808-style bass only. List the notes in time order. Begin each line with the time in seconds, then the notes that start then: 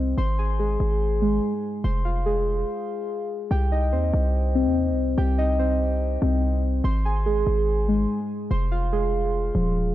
Already playing: C2
0.18 G#1
0.80 G#1
1.84 F1
3.51 C2
3.93 D#2
4.14 C2
4.66 D#2
4.92 C2
5.18 C2
6.22 C2
6.84 G#1
7.47 G#1
8.51 F1
9.55 D#1